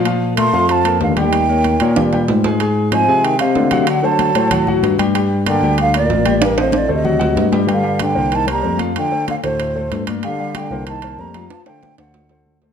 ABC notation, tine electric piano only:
X:1
M:4/4
L:1/8
Q:1/4=189
K:Gm
V:1 name="Tine electric piano" clef=bass
B,,3 F,,3 E,,2- | E,,3 B,,3 _A,,2- | _A,,3 C,3 D,2- | D,3 A,,3 G,,2- |
G,,3 D,,3 A,,,2- | A,,,3 D,,3 G,,2 | G,,3 C,,3 F,,2 | z3 D,,3 G,,2 |
z3 C,,3 F,,2 | z3 D,,3 D,,2 |]